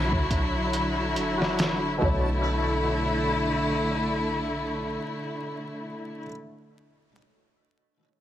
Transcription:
Already playing: 808-style bass B1, string section D3 F#3 E4, harpsichord F#4 D5 E5, synth texture A4
0.12 kick
0.31 kick, closed hi-hat
0.73 closed hi-hat
1.16 808-style bass F#1, closed hi-hat
1.38 harpsichord F#4 D5
1.42 snare
1.46 harpsichord E5
1.59 snare, closed hi-hat
1.98 harpsichord B2 A3, string section E4
2.02 808-style bass B1, string section D3 A3, harpsichord C#5, kick
2.07 harpsichord D5

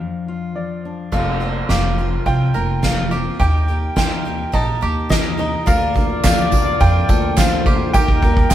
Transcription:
Already playing: steel-string acoustic guitar F3 D4 F4, upright piano F5
0.00 steel-string acoustic guitar F2
0.28 steel-string acoustic guitar F4
0.55 steel-string acoustic guitar F3, upright piano D5
0.85 steel-string acoustic guitar D4
1.12 upright bass F1, twelve-string acoustic guitar F2 C3 F3 A#3 C4 F4, five-string banjo A4, upright piano F5, kick, crash
1.40 twelve-string acoustic guitar F3 A#3 C4 F4
1.69 upright bass F1, twelve-string acoustic guitar F2 C3 F3 A#3 C4 F4, five-string banjo G4, upright piano F5, kick, snare
1.98 twelve-string acoustic guitar F3 A#3 C4 F4
2.26 upright bass C2, twelve-string acoustic guitar F3 A#3 C4 F4, five-string banjo F4, upright piano G5, kick
2.54 upright bass F1, twelve-string acoustic guitar F3 A#3 C4 F4, five-string banjo A#4
2.83 twelve-string acoustic guitar F2 C3 F3 A#3 C4 F4, upright piano F5, kick, snare
3.11 twelve-string acoustic guitar F3 A#3 C4 F4, five-string banjo G4
3.40 upright bass D#2, twelve-string acoustic guitar D#3 A#3 D#4 G4, five-string banjo G4, upright piano G5, kick
3.68 twelve-string acoustic guitar A#3 D#4 G4
3.96 upright bass D#2, twelve-string acoustic guitar D#3 A#3 D#4 G4, five-string banjo F4, upright piano G5, kick, snare
4.25 twelve-string acoustic guitar A#3 D#4 G4
4.52 upright bass A#1, twelve-string acoustic guitar D#3 A#3 D#4 G4, five-string banjo D#4, upright piano A5, kick
4.81 upright bass D#2, twelve-string acoustic guitar A#3 D#4 G4, five-string banjo G4
5.09 twelve-string acoustic guitar D#3 A#3 D#4 G4, upright piano D#5, kick, snare
5.37 twelve-string acoustic guitar A#3 D#4 G4, five-string banjo D#4
5.66 upright bass D2, felt piano D2 D3 F3 A#3 D4 A#4, twelve-string acoustic guitar D3 F3 A#3 D4 F4, five-string banjo A#4, trumpet D5, upright piano F5, kick, tambourine
5.94 felt piano F3 A#3 D4 A#4, twelve-string acoustic guitar A#3 D4 F4, kick, tambourine
6.23 upright bass D2, twelve-string acoustic guitar D3 F3 A#3 D4 F4, felt piano F3 A#3 D4 G4, five-string banjo G4, upright piano F5, kick, snare, clap, tambourine
6.51 felt piano F3 A#3 D4 A#4, twelve-string acoustic guitar A#3 D4 F4, kick, tambourine
6.80 upright bass F2, twelve-string acoustic guitar F3 A#3 D4 F4, felt piano F3 A#3 D4 A#4, five-string banjo F4, upright piano G5, kick, tambourine
7.08 upright bass D2, felt piano F3 A#3 D4 A#4, twelve-string acoustic guitar A#3 D4 F4, five-string banjo A4, kick, tambourine
7.36 twelve-string acoustic guitar D3 F3 A#3 D4 F4, felt piano F3 A#3 D4 C5, trumpet C5, upright piano F5, kick, snare, clap, tambourine
7.65 felt piano F3 A#3 D4 A4, twelve-string acoustic guitar A#3 D4 F4, five-string banjo G4, kick
7.93 upright bass D#2, felt piano D#2 D#3 G3 A#3 D#4 A#4, twelve-string acoustic guitar D#3 A#3 D#4 G4, five-string banjo G4, trumpet A#4, upright piano G5, kick, tambourine
8.08 kick
8.22 felt piano G3 A#3 D#4 A#4, twelve-string acoustic guitar A#3 D#4 G4, kick
8.37 kick
8.50 upright bass D#2, twelve-string acoustic guitar D#3 A#3, felt piano G3, five-string banjo F4, upright piano G5, kick, snare, clap, tambourine

